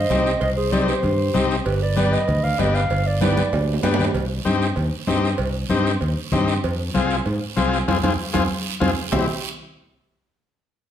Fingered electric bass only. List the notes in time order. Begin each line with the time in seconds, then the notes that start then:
0.10 C2
0.41 C2
1.04 G2
1.35 C2
1.66 G1
2.29 D2
2.59 G1
2.90 G1
3.53 D2
3.83 G2
4.14 C2
4.46 G2
4.77 D#2
5.08 G2
5.39 C2
5.71 G2
6.01 D#2
6.33 G2
6.64 F2
6.95 C2
7.26 G#2
7.57 C2
7.88 F2
8.04 F2
8.35 F2
8.82 F2
9.12 C2